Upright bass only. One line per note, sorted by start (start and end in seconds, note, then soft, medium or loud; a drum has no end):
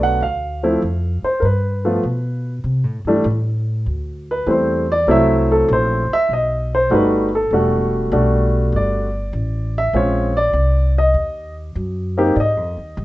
0.00 0.19 B1 medium
0.21 0.80 D2 medium
0.82 1.21 F2 medium
1.23 muted upright bass stroke soft
1.42 2.02 G2 medium
2.03 2.63 B2 medium
2.64 2.84 C3 medium
2.84 3.04 A2 medium
3.05 3.24 G2 medium
3.24 3.84 A2 loud
3.86 4.45 D2 medium
4.46 5.06 E2 medium
5.07 5.66 C2 medium
5.68 6.07 A#1 loud
6.11 muted upright bass stroke soft
6.29 6.88 B1 medium
6.90 7.49 G1 medium
7.51 8.10 E1 medium
8.12 8.70 B1 medium
8.72 9.31 G1 medium
9.33 9.92 A1 medium
9.93 10.52 A#1 medium
10.53 11.13 C2 medium
11.14 11.73 D#2 medium
11.75 12.34 F#2 medium
12.36 12.57 G#2 medium
12.57 12.76 F2 medium
12.77 12.96 D#2 medium
12.97 13.05 G2 medium